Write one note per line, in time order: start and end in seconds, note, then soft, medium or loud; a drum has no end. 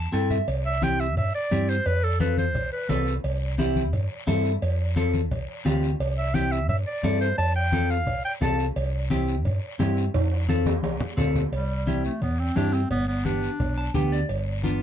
0.00 0.12 A5 medium
0.12 0.41 G2 medium
0.12 0.37 C4 medium
0.12 0.37 E4 medium
0.12 0.37 A4 medium
0.12 0.29 G5 medium
0.12 short guiro medium
0.30 0.46 E5 medium
0.30 low conga medium
0.30 short guiro medium
0.48 1.17 C2 medium
0.48 cowbell loud
0.48 long guiro medium
0.66 0.85 E5 medium
0.82 1.06 C4 medium
0.82 1.06 E4 medium
0.82 1.07 G4 medium
0.82 1.02 G5 loud
0.82 cowbell medium
0.82 high conga medium
0.82 short guiro medium
1.00 1.17 E5 medium
1.00 short guiro medium
1.17 1.31 G2 medium
1.17 1.33 E5 medium
1.17 cowbell medium
1.17 low conga medium
1.17 long guiro medium
1.35 1.71 D5 loud
1.51 1.79 G2 medium
1.51 1.75 C4 medium
1.51 1.76 E4 medium
1.51 1.76 G4 medium
1.51 cowbell medium
1.51 high conga medium
1.51 short guiro medium
1.69 1.88 C5 medium
1.69 short guiro medium
1.86 2.55 F2 medium
1.86 2.05 B4 loud
1.86 cowbell loud
1.86 long guiro medium
2.04 2.20 A4 medium
2.20 2.44 C4 medium
2.20 2.44 F4 medium
2.20 2.45 A4 medium
2.20 2.36 B4 medium
2.20 cowbell medium
2.20 high conga medium
2.20 short guiro medium
2.38 2.70 C5 medium
2.38 high conga medium
2.38 short guiro medium
2.55 2.69 C2 medium
2.55 cowbell medium
2.55 low conga medium
2.55 long guiro medium
2.72 2.91 B4 medium
2.89 3.17 C2 medium
2.89 3.13 C4 medium
2.89 3.14 F4 medium
2.89 3.15 A4 medium
2.89 3.14 B4 medium
2.89 cowbell medium
2.89 high conga medium
2.89 low timbale medium
2.89 short guiro medium
3.07 short guiro medium
3.24 3.93 C2 medium
3.24 cowbell medium
3.24 long guiro medium
3.58 3.83 C4 loud
3.58 3.83 E4 medium
3.58 3.83 G4 medium
3.58 cowbell medium
3.58 high conga medium
3.58 short guiro medium
3.76 high conga medium
3.76 short guiro medium
3.93 4.07 G2 medium
3.93 cowbell medium
3.93 low conga medium
3.93 long guiro medium
4.27 4.55 G2 medium
4.27 4.51 C4 medium
4.27 4.52 E4 medium
4.27 4.52 A4 medium
4.27 cowbell medium
4.27 high conga medium
4.27 low timbale medium
4.27 short guiro medium
4.45 short guiro medium
4.62 5.31 F2 medium
4.62 cowbell loud
4.62 long guiro medium
4.96 5.20 C4 medium
4.96 5.21 F4 medium
4.96 5.21 A4 medium
4.96 cowbell medium
4.96 high conga medium
4.96 short guiro medium
5.14 high conga medium
5.14 short guiro medium
5.31 5.45 C2 medium
5.31 cowbell medium
5.31 low conga medium
5.31 long guiro medium
5.65 5.93 D2 medium
5.65 5.89 C4 medium
5.65 5.90 F4 medium
5.65 5.90 G4 medium
5.65 cowbell medium
5.65 high conga medium
5.65 low timbale medium
5.65 short guiro medium
5.83 short guiro medium
6.00 6.69 C2 medium
6.00 cowbell loud
6.00 long guiro medium
6.17 6.36 E5 medium
6.34 6.58 C4 medium
6.34 6.59 E4 medium
6.34 6.59 G4 medium
6.34 6.53 G5 medium
6.34 cowbell medium
6.34 high conga medium
6.34 short guiro medium
6.52 6.68 E5 medium
6.52 short guiro medium
6.69 6.83 G2 medium
6.69 6.77 E5 medium
6.69 cowbell medium
6.69 low conga medium
6.69 long guiro medium
6.86 7.18 D5 medium
7.03 7.31 G2 medium
7.03 7.28 C4 medium
7.03 7.28 E4 medium
7.03 7.28 A4 medium
7.03 cowbell medium
7.03 high conga medium
7.03 low timbale medium
7.03 short guiro medium
7.21 7.37 C5 medium
7.21 short guiro medium
7.38 8.07 F2 medium
7.38 7.54 A5 loud
7.38 cowbell loud
7.38 long guiro medium
7.55 7.92 G5 loud
7.72 7.97 C4 medium
7.72 7.97 F4 medium
7.72 7.97 A4 medium
7.72 cowbell medium
7.72 high conga medium
7.72 short guiro medium
7.90 8.24 F5 medium
7.90 short guiro medium
8.07 8.21 C2 loud
8.07 cowbell medium
8.07 low conga medium
8.07 long guiro medium
8.25 8.32 G5 loud
8.41 8.69 C2 medium
8.41 8.65 C4 medium
8.41 8.65 F4 medium
8.41 8.66 A4 medium
8.41 8.66 A5 medium
8.41 cowbell medium
8.41 high conga medium
8.41 low conga medium
8.41 low timbale medium
8.41 short guiro medium
8.59 short guiro medium
8.76 9.45 C2 loud
8.76 cowbell loud
8.76 long guiro medium
9.10 9.35 C4 medium
9.10 9.35 E4 medium
9.10 9.35 G4 medium
9.10 cowbell medium
9.10 high conga medium
9.10 short guiro medium
9.28 short guiro medium
9.45 9.59 G2 medium
9.45 cowbell medium
9.45 low conga medium
9.45 long guiro medium
9.79 10.07 G2 medium
9.79 10.04 C4 medium
9.79 10.04 E4 medium
9.79 10.04 G4 loud
9.79 cowbell medium
9.79 high conga medium
9.79 low timbale medium
9.79 short guiro medium
9.97 short guiro medium
10.14 10.83 F2 medium
10.14 cowbell loud
10.14 low conga medium
10.14 high timbale loud
10.14 long guiro medium
10.32 high timbale medium
10.49 10.73 C4 medium
10.49 10.73 F4 medium
10.49 10.73 A4 medium
10.49 cowbell medium
10.49 high conga medium
10.49 short guiro medium
10.66 high conga medium
10.66 low timbale loud
10.66 short guiro medium
10.83 10.97 C2 medium
10.83 cowbell medium
10.83 high conga medium
10.83 low timbale loud
10.83 long guiro medium
11.00 low conga loud
11.17 11.46 D2 medium
11.17 11.42 C4 medium
11.17 11.42 F4 medium
11.17 11.42 A4 medium
11.17 cowbell medium
11.17 low conga medium
11.17 low timbale medium
11.17 short guiro medium
11.35 low conga medium
11.35 low timbale medium
11.35 short guiro medium
11.52 12.08 C2 medium
11.52 12.02 G3 medium
11.52 cowbell medium
11.52 high conga soft
11.52 long guiro medium
11.87 12.11 C4 medium
11.87 12.12 E4 medium
11.87 12.12 G4 medium
11.87 high conga medium
11.87 short guiro medium
12.04 12.21 A3 medium
12.04 short guiro medium
12.21 12.49 E2 medium
12.21 12.41 B3 medium
12.21 cowbell medium
12.21 high conga soft
12.21 low conga medium
12.21 long guiro medium
12.39 12.58 C4 medium
12.56 12.84 G2 medium
12.56 12.80 C4 medium
12.56 12.75 D4 loud
12.56 12.81 E4 medium
12.56 12.81 G4 medium
12.56 high conga medium
12.56 low timbale medium
12.56 short guiro medium
12.73 12.90 C4 medium
12.73 short guiro medium
12.91 13.46 G1 medium
12.91 13.07 B3 loud
12.91 cowbell medium
12.91 high conga soft
12.91 low conga medium
12.91 long guiro medium
13.08 13.27 B3 medium
13.25 13.50 B3 medium
13.25 13.95 D4 medium
13.25 13.50 D4 medium
13.25 13.50 G4 medium
13.25 high conga medium
13.25 short guiro medium
13.43 short guiro medium
13.60 13.88 B1 medium
13.60 cowbell medium
13.60 high conga soft
13.60 low conga medium
13.60 long guiro medium
13.78 13.94 A5 medium
13.94 14.22 D2 medium
13.94 14.19 B3 medium
13.94 14.19 D4 medium
13.94 14.19 G4 loud
13.94 14.11 G5 medium
13.94 high conga medium
13.94 low conga medium
13.94 short guiro medium
14.12 14.28 D5 medium
14.12 short guiro medium
14.29 14.82 G1 medium
14.29 cowbell loud
14.29 high conga soft
14.29 long guiro medium
14.63 14.82 B3 medium
14.63 14.82 D4 medium
14.63 14.82 F4 loud
14.63 high conga medium
14.63 short guiro medium